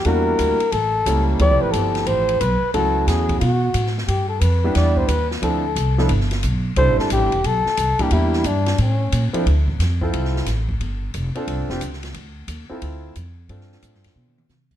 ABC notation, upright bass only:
X:1
M:4/4
L:1/8
Q:"Swing" 1/4=179
K:Ddor
V:1 name="Upright bass" clef=bass
E,,2 D,, z A,,,2 ^C,,2 | (3D,, C,, A,,, G,,,2 A,,,2 B,,, z | ^C,,2 E,,2 B,,2 A,,2 | G,,2 F,,2 E,,2 _E,,2 |
D,,2 C,,2 G,,,2 B,,,2 | (3C,, A,,, G,,, (3A,,, G,,, E,,, B,,, z C,, z | E,,2 G,,2 A,,2 _B,, z | D,,2 F,,2 C,,2 A,,,2 |
G,,,2 F,,, z (3C,, G,,, F,,, _D,,2 | D,,2 _E,, z D,,2 F,,2 | G,,2 (3A,, G,, F,, B,,2 C,2 |]